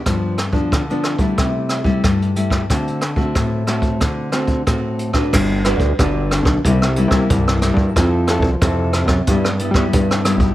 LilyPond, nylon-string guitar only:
\new Staff \with { instrumentName = "Nylon-string guitar" } { \time 4/4 \key g \major \tempo 4 = 91 << { <f b d'>8 r16 <f b d'>8 <f b d'>8 <g a e'>4 <g a e'>8. <g a e'>8 | <a c' fis'>8 r16 <a c' fis'>8. <a c' fis'>4 <a c' fis'>8 <a c' fis'>8. <d' fis' b'>16~ | <d' fis' b'>8 <d' fis' b'>8 <d' fis' b'>4 <g bes e'>16 r16 <g bes e'>16 <g bes e'>8. <g bes e'>8 | <c' e' a'>8 <c' e' a'>16 r16 <c' e' a'>8. r16 <g b e'>16 r16 <g b e'>16 <g b e'>8. <g b e'>8 | } \\ { g,4 d4 c4 g,4 | d4 a,4 d4 a,4 | g4 d4 c4 g,4 | f4 c4 g,4 g,4 | } >> }